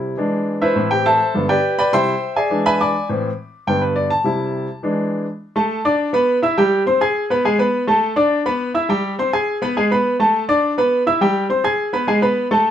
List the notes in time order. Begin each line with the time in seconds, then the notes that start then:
Already playing: C3 G3 E4
0.17 E3 G#3 D4
0.62 E4 B4 C5 E5
0.76 A2 E3 C4
0.91 G4 G5
1.06 A4 C5 E5 A5
1.34 G2 D3 B3
1.49 G4 B4 D5 G5
1.79 B4 D5 G5 B5
1.93 C3 G3 E4 C5 E5 G5 C6
2.36 G#4 D5 E5 G#5
2.50 E3 G#3 D4
2.66 B4 E5 G#5 B5
2.81 D5 G#5 B5 D6
3.09 A2 E3 C4
3.67 G2 D3 B3 G5
3.82 B4
3.96 D5
4.10 A5
4.24 C3 G3 E4
4.83 E3 G#3 D4
5.56 A3 A4 A5
5.85 D4 D5 D6
6.13 B3 B4 B5
6.42 E4 E5 E6
6.58 G3 G4 G5
6.86 C4 C5 C6
7.01 G#4 G#5 G#6
7.30 B3 B4 B5
7.45 G#3 G#4 G#5
7.59 B3 B4 B5
7.87 A3 A4 A5
8.16 D4 D5 D6
8.46 B3 B4 B5
8.74 E4 E5 E6
8.89 G3 G4 G5
9.19 C4 C5 C6
9.33 G#4 G#5 G#6
9.62 B3 B4 B5
9.77 G#3 G#4 G#5
9.91 B3 B4 B5
10.20 A3 A4 A5
10.49 D4 D5 D6
10.78 B3 B4 B5
11.07 E4 E5 E6
11.21 G3 G4 G5
11.50 C4 C5 C6
11.64 G#4 G#5 G#6
11.93 B3 B4 B5
12.07 G#3 G#4 G#5
12.22 B3 B4 B5
12.51 A3 A4 A5